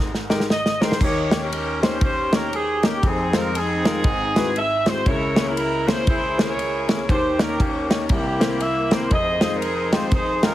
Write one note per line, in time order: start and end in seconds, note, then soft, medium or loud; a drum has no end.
0.00 0.96 G#1 medium
0.00 0.96 G#2 medium
0.00 0.27 C4 medium
0.00 0.27 D#4 medium
0.14 snare medium
0.30 0.43 G#3 medium
0.30 0.43 D#4 medium
0.30 0.43 G4 medium
0.30 0.43 A#4 medium
0.30 snare medium
0.40 snare medium
0.50 0.79 D#5 medium
0.50 snare medium
0.66 snare medium
0.81 0.94 G#3 medium
0.81 0.94 D#4 medium
0.81 0.94 G4 medium
0.81 0.94 A#4 medium
0.81 1.01 C5 medium
0.81 snare loud
0.92 snare medium
1.01 3.00 D#2 medium
1.01 3.00 D#3 medium
1.01 1.42 G4 medium
1.01 1.42 A#4 medium
1.01 1.40 C#5 loud
1.01 kick loud
1.01 crash medium
1.31 1.45 A#3 medium
1.31 1.44 C#4 medium
1.31 1.45 D#4 medium
1.31 1.45 G4 medium
1.31 1.45 C#5 medium
1.31 snare loud
1.31 ride medium
1.43 2.40 C#4 medium
1.43 2.01 G4 medium
1.43 1.83 A#4 medium
1.53 ride medium
1.82 1.95 A#3 medium
1.82 1.95 C#4 medium
1.82 1.96 D#4 medium
1.82 1.96 G4 medium
1.82 2.01 C5 loud
1.82 1.95 C5 medium
1.82 snare loud
1.82 ride medium
2.01 2.84 G4 medium
2.01 2.31 C5 loud
2.01 kick loud
2.01 ride medium
2.33 2.46 A#3 medium
2.33 2.46 C#4 medium
2.33 2.46 D#4 medium
2.33 2.46 G4 medium
2.33 2.52 A#4 medium
2.33 2.46 C#5 medium
2.33 snare loud
2.33 ride medium
2.53 2.84 G#4 medium
2.53 ride medium
2.83 2.97 A#3 medium
2.83 2.97 C#4 medium
2.83 2.97 D#4 medium
2.83 2.97 G4 medium
2.83 3.04 G4 medium
2.83 2.97 A#4 medium
2.83 snare loud
2.83 ride soft
3.03 4.01 F1 medium
3.03 4.01 F2 medium
3.03 3.55 C4 medium
3.03 3.55 D#4 medium
3.03 3.36 G#4 medium
3.03 kick loud
3.03 ride medium
3.33 3.47 G#3 medium
3.33 3.47 C4 medium
3.33 3.47 D#4 medium
3.33 3.47 F4 medium
3.33 3.55 A#4 loud
3.33 3.47 C5 medium
3.33 snare loud
3.33 ride medium
3.55 4.53 C4 medium
3.55 4.53 D#4 medium
3.55 4.57 G#4 loud
3.55 ride medium
3.85 3.98 G#3 medium
3.85 3.98 C4 medium
3.85 3.98 D#4 medium
3.85 3.98 F4 medium
3.85 3.98 A#4 medium
3.85 snare loud
3.85 ride medium
4.04 5.02 G#1 medium
4.04 5.02 G#2 medium
4.04 kick loud
4.04 ride medium
4.36 4.49 G#3 medium
4.36 4.49 C4 medium
4.36 4.49 E4 medium
4.36 4.49 F#4 medium
4.36 4.49 B4 loud
4.36 snare loud
4.36 ride medium
4.56 4.88 E5 loud
4.56 ride medium
4.86 4.99 G#3 medium
4.86 4.99 C4 medium
4.86 4.99 E4 medium
4.86 4.99 F#4 medium
4.86 4.99 C5 medium
4.86 5.07 C5 loud
4.86 snare loud
4.86 ride medium
5.06 7.05 C#2 medium
5.06 7.05 C#3 medium
5.06 5.47 E4 medium
5.06 5.46 A#4 medium
5.06 5.47 C#5 loud
5.06 kick loud
5.06 ride medium
5.36 5.50 A#3 medium
5.36 5.50 C#4 medium
5.36 5.50 E4 medium
5.36 5.50 G#4 medium
5.36 5.50 C#5 medium
5.36 snare loud
5.36 ride medium
5.47 6.08 E4 medium
5.47 5.88 A#4 loud
5.57 ride medium
5.87 6.00 A#3 medium
5.87 6.01 C#4 medium
5.87 6.01 E4 medium
5.87 6.01 G#4 medium
5.87 6.07 C5 loud
5.87 6.01 C5 medium
5.87 snare loud
5.87 ride medium
6.07 6.39 E4 medium
6.07 7.05 G#4 medium
6.07 6.37 C5 loud
6.07 kick loud
6.07 ride medium
6.38 6.51 A#3 medium
6.38 6.51 C#4 medium
6.38 6.51 E4 medium
6.38 7.05 E4 medium
6.38 6.51 G#4 medium
6.38 7.05 A#4 medium
6.38 6.51 C5 medium
6.38 6.86 C#5 loud
6.38 snare loud
6.38 ride medium
6.59 ride medium
6.88 7.02 A#3 medium
6.88 7.02 C#4 medium
6.88 7.02 E4 medium
6.88 7.02 G#4 medium
6.88 7.02 C#5 medium
6.88 snare loud
6.88 ride medium
7.09 8.06 D#2 medium
7.09 8.06 D#3 medium
7.09 7.60 G4 medium
7.09 7.38 C5 loud
7.09 kick loud
7.09 ride medium
7.39 7.53 A#3 medium
7.39 7.53 C#4 medium
7.39 7.53 D#4 medium
7.39 7.53 G4 medium
7.39 7.60 A#4 loud
7.39 7.53 C#5 medium
7.39 snare loud
7.39 ride medium
7.60 7.98 A#3 medium
7.60 7.98 C#4 medium
7.60 7.97 G4 loud
7.60 kick loud
7.60 ride medium
7.90 8.03 A#3 medium
7.90 8.03 C#4 medium
7.90 8.04 D#4 medium
7.90 8.04 G4 medium
7.90 8.04 C#5 medium
7.90 snare loud
7.90 ride medium
8.09 9.07 C2 medium
8.09 9.07 C3 medium
8.09 9.08 A#3 medium
8.09 9.08 E4 medium
8.09 8.58 G4 loud
8.09 kick loud
8.09 ride medium
8.40 8.53 A#3 medium
8.40 8.53 C4 medium
8.40 8.54 E4 medium
8.40 8.54 G4 medium
8.40 8.54 C5 medium
8.40 snare loud
8.40 ride medium
8.60 8.92 E5 loud
8.60 ride medium
8.91 9.04 A#3 medium
8.91 9.04 C4 medium
8.91 9.04 E4 medium
8.91 9.04 G4 medium
8.91 9.04 A#4 medium
8.91 9.12 C5 loud
8.91 snare loud
8.91 ride medium
9.11 10.54 F1 medium
9.11 10.54 F2 medium
9.11 10.09 G#4 medium
9.11 9.92 C5 medium
9.11 9.52 D#5 loud
9.11 kick loud
9.11 ride medium
9.41 9.55 G#3 medium
9.41 9.55 C4 medium
9.41 9.55 D#4 medium
9.41 9.55 F4 medium
9.41 9.55 C5 medium
9.41 snare loud
9.41 ride medium
9.54 10.12 D#4 medium
9.54 9.93 A#4 loud
9.62 ride medium
9.93 10.06 G#3 medium
9.93 10.06 C4 medium
9.93 10.06 D#4 medium
9.93 10.06 F4 medium
9.93 10.06 G4 medium
9.93 10.12 C5 loud
9.93 snare loud
9.93 ride medium
10.12 10.43 D#4 medium
10.12 10.54 G#4 medium
10.12 10.41 C5 loud
10.12 kick loud
10.12 ride medium
10.43 10.54 G#3 medium
10.43 10.54 C4 medium
10.43 10.54 D#4 medium
10.43 10.54 F4 medium
10.43 10.54 G4 medium
10.43 10.54 A#4 loud
10.43 snare loud
10.43 ride medium